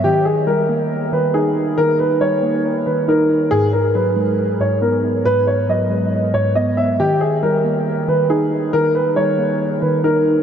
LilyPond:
<<
  \new Staff \with { instrumentName = "Grand piano" } { \time 4/4 \key dis \phrygian \tempo 4 = 138 g'8 gis'8 ais'4. b'8 gis'4 | ais'8 b'8 cis''4 r8 b'8 ais'4 | gis'8 ais'8 b'4. cis''8 ais'4 | b'8 cis''8 dis''4. cis''8 dis''8 e''8 |
g'8 gis'8 ais'4. b'8 gis'4 | ais'8 b'8 cis''4 r8 b'8 ais'4 | }
  \new Staff \with { instrumentName = "Synth keys" } { \clef bass \time 4/4 \key dis \phrygian dis4 g8 ais4 dis8 dis'8 dis'8 | dis4 g8 ais4 dis8 dis'8 dis'8 | gis,4 fis8 gis4 gis,8 b8 b8 | gis,4 fis8 gis4 gis,8 b8 b8 |
dis4 g8 ais4 dis8 dis'8 dis'8 | dis4 g8 ais4 dis8 dis'8 dis'8 | }
>>